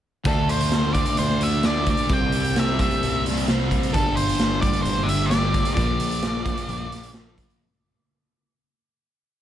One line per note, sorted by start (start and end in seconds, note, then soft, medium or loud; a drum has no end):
0.24 1.01 D2 medium
0.24 0.93 D3 medium
0.24 0.95 A3 medium
0.24 0.93 D4 medium
0.24 0.50 A4 medium
0.24 kick loud
0.24 closed hi-hat medium
0.49 0.93 C5 medium
0.49 closed hi-hat medium
0.60 closed hi-hat medium
0.71 snare loud
0.71 closed hi-hat medium
0.93 1.62 D3 medium
0.93 1.64 A3 medium
0.93 1.66 D4 medium
0.93 1.18 D5 medium
0.93 kick medium
0.93 closed hi-hat medium
1.05 closed hi-hat medium
1.17 1.93 D2 medium
1.17 1.42 C5 medium
1.17 closed hi-hat medium
1.41 1.66 E5 medium
1.41 closed hi-hat medium
1.63 2.08 D3 medium
1.63 2.11 A3 medium
1.63 2.13 D4 medium
1.63 1.89 D5 medium
1.63 snare loud
1.63 closed hi-hat medium
1.86 2.12 D5 medium
1.86 kick medium
1.86 closed hi-hat medium
1.97 closed hi-hat medium
2.09 2.85 C2 medium
2.09 2.78 C3 medium
2.09 2.80 G3 medium
2.09 2.59 G5 medium
2.09 kick loud
2.09 closed hi-hat medium
2.13 2.79 C4 medium
2.32 closed hi-hat medium
2.44 closed hi-hat medium
2.56 2.79 E5 loud
2.56 snare loud
2.56 closed hi-hat medium
2.79 3.46 C3 medium
2.79 3.48 G3 medium
2.79 3.47 C4 medium
2.79 3.23 E5 medium
2.79 kick medium
2.79 closed hi-hat medium
2.91 closed hi-hat soft
3.03 3.78 C2 medium
3.03 closed hi-hat medium
3.26 snare soft
3.26 closed hi-hat medium
3.37 closed hi-hat medium
3.47 3.92 C3 medium
3.47 3.93 G3 medium
3.47 3.94 C4 medium
3.47 snare medium
3.47 closed hi-hat medium
3.71 kick medium
3.71 closed hi-hat medium
3.83 closed hi-hat medium
3.94 4.69 G1 medium
3.94 4.61 G2 medium
3.94 4.62 D3 medium
3.94 4.61 G3 medium
3.94 4.15 A4 medium
3.94 kick medium
3.94 closed hi-hat medium
4.15 4.61 C5 medium
4.15 closed hi-hat medium
4.29 closed hi-hat medium
4.39 snare loud
4.39 closed hi-hat medium
4.61 5.28 G2 medium
4.61 5.30 D3 medium
4.61 5.30 G3 medium
4.61 4.82 D5 loud
4.61 kick medium
4.61 closed hi-hat medium
4.73 closed hi-hat medium
4.83 5.60 G1 medium
4.83 5.08 C5 medium
4.83 closed hi-hat medium
5.03 5.30 E5 medium
5.09 closed hi-hat medium
5.26 5.75 G2 medium
5.26 5.73 D5 loud
5.31 5.75 D3 medium
5.31 5.76 G3 medium
5.31 snare loud
5.31 closed hi-hat medium
5.54 kick medium
5.54 closed hi-hat medium
5.65 closed hi-hat medium
5.74 6.52 A#1 medium
5.74 6.44 A#2 medium
5.74 6.44 F3 medium
5.74 7.09 D5 medium
5.74 kick medium
5.74 closed hi-hat medium
5.79 6.42 A#3 medium
6.00 closed hi-hat medium
6.11 closed hi-hat medium
6.22 snare loud
6.22 closed hi-hat medium
6.44 7.12 A#2 medium
6.44 7.13 F3 medium
6.44 7.12 A#3 medium
6.44 kick medium
6.44 closed hi-hat medium
6.57 closed hi-hat medium
6.69 7.44 A#1 medium
6.69 closed hi-hat medium
6.92 snare soft
6.92 closed hi-hat medium
7.03 closed hi-hat medium
7.13 7.59 A#2 medium
7.13 7.60 F3 medium
7.13 7.60 A#3 medium
7.13 snare medium
7.13 closed hi-hat medium
7.38 kick medium
7.38 closed hi-hat medium
7.50 closed hi-hat medium